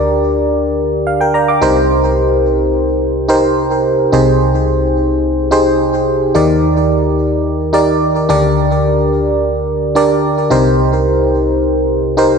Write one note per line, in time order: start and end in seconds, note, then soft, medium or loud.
0.00 1.59 D2 medium
0.00 1.58 D3 medium
0.00 0.29 D4 medium
0.00 0.29 G4 medium
0.00 0.29 A#4 medium
0.00 0.33 D5 loud
1.07 1.20 F5 medium
1.21 1.34 A#4 medium
1.21 1.34 G5 medium
1.34 1.48 D5 medium
1.34 1.48 A#5 medium
1.48 1.75 F5 medium
1.48 1.75 D6 medium
1.61 3.80 C2 medium
1.61 3.80 C3 medium
1.61 2.51 D#4 medium
1.61 2.51 G4 medium
1.61 2.51 A#4 medium
1.61 2.52 C5 medium
3.28 3.86 D#4 medium
3.28 3.86 G4 medium
3.28 3.87 A#4 medium
3.28 3.87 C5 medium
4.12 6.31 C2 medium
4.12 6.31 C3 medium
4.12 4.89 D#4 medium
4.12 4.89 G4 medium
4.12 4.89 G#4 medium
4.12 4.89 C5 medium
5.51 6.09 D#4 medium
5.51 6.09 G4 medium
5.51 6.09 G#4 medium
5.51 6.09 C5 medium
6.35 8.26 D#2 medium
6.35 8.25 D#3 medium
6.35 7.11 D#4 medium
6.35 7.11 G4 medium
6.35 7.11 A#4 medium
6.35 7.12 D5 medium
7.73 8.29 D#4 medium
7.73 8.28 G4 medium
7.73 8.28 A#4 medium
7.73 8.29 D5 medium
8.29 10.48 D2 medium
8.29 10.48 D3 medium
8.29 9.18 D4 medium
8.29 9.18 G4 medium
8.29 9.18 A#4 medium
8.29 9.19 D5 loud
9.95 10.51 D4 medium
9.95 10.50 G4 medium
9.95 10.50 A#4 medium
9.95 10.52 D5 medium
10.50 12.38 C2 medium
10.50 12.38 C3 medium
10.50 11.40 D#4 medium
10.50 11.40 G4 medium
10.50 11.40 A#4 medium
10.50 11.40 C5 loud
12.17 12.38 D#4 medium
12.17 12.38 G4 medium
12.17 12.38 A#4 medium
12.17 12.38 C5 medium